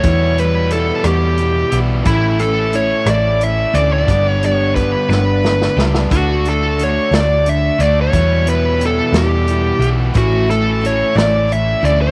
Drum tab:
HH |x-x-x-x-x-x-|x-x-x-x-x-x-|x-x-x-------|x-x-x-x-x-x-|
SD |------r-----|------r-----|------o-oooo|------o-----|
BD |o-----------|o-----------|o---o-------|o-----------|

HH |x-x-x-x-x-x-|x-x-x-x-x-x-|
SD |------o-----|------o-----|
BD |o-----------|o-----------|